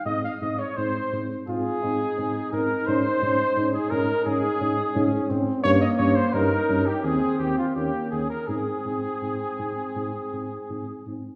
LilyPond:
<<
  \new Staff \with { instrumentName = "Cornet" } { \time 4/4 \key aes \major \tempo 4 = 85 ees''16 f''16 ees''16 des''16 c''8. r16 aes'4. bes'8 | c''4~ c''16 aes'16 bes'8 aes'4. r8 | des''16 ees''16 des''16 c''16 bes'8. g'16 aes'8 g'16 f'16 g'8 aes'16 bes'16 | aes'2.~ aes'8 r8 | }
  \new Staff \with { instrumentName = "Flugelhorn" } { \time 4/4 \key aes \major ees''16 f''16 ees''16 des''16 c''8. r16 aes'4. bes'8 | c''4~ c''16 aes'16 bes'8 aes'4. r8 | des''16 ees''16 des''16 c''16 bes'8. g'16 aes'8 g'16 f'16 g'8 aes'16 bes'16 | aes'2.~ aes'8 r8 | }
  \new Staff \with { instrumentName = "French horn" } { \time 4/4 \key aes \major c'8 c'8 c'8 c'8 c'8 c'8 c'8 c'8 | des'8 des'8 des'8 des'8 des'8 des'8 des'8 des'8 | des'8 des'8 des'8 des'8 c'8 c'8 des'8 des'8 | c'8 c'8 c'8 c'8 c'8 c'8 c'8 c'8 | }
  \new Staff \with { instrumentName = "Trombone" } { \time 4/4 \key aes \major r2 f'8 ees'4.~ | ees'2. des'8 c'8 | bes4 ees'4 c'4 bes8 r8 | c'2.~ c'8 r8 | }
  \new Staff \with { instrumentName = "Tuba" } { \clef bass \time 4/4 \key aes \major aes,8 aes,8 aes,8 aes,8 aes,8 aes,8 aes,8 aes,8 | aes,8 aes,8 aes,8 aes,8 aes,8 aes,8 aes,8 aes,8 | g,8 g,8 g,8 g,8 ees,8 ees,8 ees,8 ees,8 | aes,8 aes,8 aes,8 aes,8 aes,8 aes,8 aes,8 aes,8 | }
>>